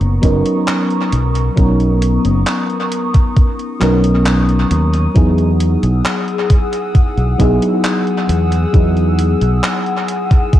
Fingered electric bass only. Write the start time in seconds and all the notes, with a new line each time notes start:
0.01 F#1
0.23 F#1
1.13 B1
1.57 B1
2.25 F#1
3.81 B1
4.71 D#2
5.16 E2
5.83 B1
6.95 muted fingered electric bass stroke
7.17 B1
7.40 B1
8.29 E2
8.74 E2
9.42 B1